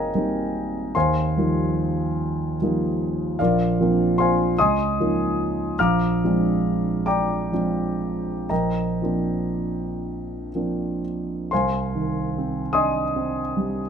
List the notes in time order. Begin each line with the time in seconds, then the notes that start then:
Already playing: G#1 G3 A#3 C4 D#4 G#4 A#4 C#5 D#5 F5 G5 G#5 A#5
0.15 G3 A#3 C4 D#4
0.95 D#2 C5 F5 G#5 C6
1.37 F3 G3 A#3 D#4
2.62 F3 G3 A#3 D#4
3.39 A#1 F4 A#4 D5 F5
3.80 F3 A#3 C4 D4
4.18 C5 F5 G#5 C6
4.59 C#2 D#5 G#5 C6 D#6
5.00 F3 A#3 C#4 D#4
5.79 A#1 F5 A#5 D6 F6
6.24 F3 G#3 C4 D4
7.06 D5 G5 A#5 D6
7.52 F3 G#3 C4 D4
8.49 A#1 A#4 D#5 G5 A#5
9.02 F3 A#3 C4 D4
10.55 F3 A#3 C4 D4
11.51 C2 C5 F5 G#5 C6
11.95 D#3
12.38 C4
12.73 D4 D#5 G#5 C6 D#6
13.16 C4
13.57 G3